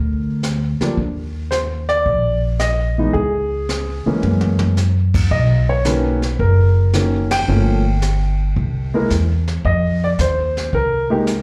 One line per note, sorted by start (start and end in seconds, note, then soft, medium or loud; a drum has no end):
0.00 0.77 D2 medium
0.00 0.39 A#4 medium
0.43 snare medium
0.43 hi-hat pedal soft
0.80 0.96 F3 medium
0.80 0.96 G3 soft
0.80 0.96 A#3 soft
0.80 0.97 D4 medium
0.80 muted upright bass stroke soft
0.80 snare soft
0.97 2.02 D#2 medium
0.97 brush sweep soft
0.97 kick soft
1.51 1.59 C5 medium
1.51 snare soft
1.51 hi-hat pedal medium
1.89 2.39 D5 loud
1.89 snare soft
2.06 3.10 A#1 medium
2.06 brush sweep soft
2.06 kick soft
2.59 3.10 D#5 medium
2.59 snare medium
2.59 hi-hat pedal medium
2.98 3.13 E3 soft
2.98 3.13 G#3 soft
2.98 3.13 B3 soft
2.98 3.13 D#4 medium
3.13 4.02 C#2 medium
3.13 4.72 G#4 medium
3.13 brush sweep soft
3.13 kick soft
3.69 snare medium
3.69 hi-hat pedal soft
4.06 4.74 E3 medium
4.06 4.74 G#3 medium
4.06 4.74 A#3 medium
4.06 4.74 C#4 medium
4.06 muted upright bass stroke soft
4.23 5.27 F#2 medium
4.23 mid tom soft
4.41 mid tom soft
4.59 mid tom medium
4.77 snare soft
4.77 hi-hat pedal soft
5.14 kick medium
5.14 crash medium
5.31 6.35 B1 medium
5.31 5.70 D#5 medium
5.31 brush sweep soft
5.31 kick soft
5.69 5.86 C#5 medium
5.85 6.19 D#3 medium
5.85 6.19 F#3 medium
5.85 6.19 A#3 medium
5.85 6.20 C#4 medium
5.85 6.35 B4 medium
5.85 snare medium
5.85 hi-hat pedal medium
6.22 snare soft
6.39 7.44 F#1 medium
6.39 7.34 A#4 medium
6.39 brush sweep soft
6.39 kick soft
6.93 7.27 D#3 soft
6.93 7.28 F#3 soft
6.93 7.28 A#3 soft
6.93 7.28 C#4 medium
6.93 snare medium
6.93 hi-hat pedal soft
7.31 8.90 G5 loud
7.31 snare medium
7.31 ride medium
7.47 8.52 G1 medium
7.47 7.82 F3 medium
7.47 7.82 A3 soft
7.47 7.82 A#3 medium
7.47 7.82 C#4 medium
7.47 brush sweep soft
8.02 snare medium
8.02 hi-hat pedal medium
8.56 9.07 C2 medium
8.56 brush sweep soft
8.56 kick soft
8.94 9.09 G#3 medium
8.94 9.09 A#3 medium
8.94 9.10 E4 medium
8.94 9.10 A#4 medium
9.10 9.61 E2 medium
9.10 snare medium
9.10 hi-hat pedal soft
9.48 snare soft
9.65 10.15 F2 medium
9.65 10.04 D#5 medium
9.65 brush sweep soft
9.65 kick soft
10.04 10.09 D5 medium
10.19 10.69 D#2 medium
10.19 10.76 C5 medium
10.19 snare medium
10.19 hi-hat pedal medium
10.57 snare soft
10.73 11.41 C2 medium
10.73 11.42 A#4 medium
10.73 brush sweep soft
10.73 kick soft
11.10 11.25 G#3 medium
11.10 11.25 A#3 medium
11.10 11.26 D#4 medium
11.10 11.26 G4 medium
11.27 snare medium
11.27 hi-hat pedal medium